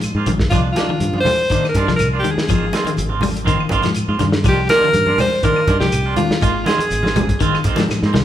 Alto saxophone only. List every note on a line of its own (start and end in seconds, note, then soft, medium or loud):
0.50 0.61 F4 medium
0.72 1.20 F4 medium
1.20 1.68 C5 loud
1.69 1.95 A#4 medium
1.96 2.08 A#4 medium
2.19 2.32 G4 medium
2.31 3.08 G#4 medium
4.48 4.69 G4 loud
4.70 5.16 A#4 loud
5.21 5.45 C5 loud
5.44 5.79 A#4 loud
5.80 6.15 G4 medium
6.16 6.63 F4 medium
6.66 7.61 G#4 medium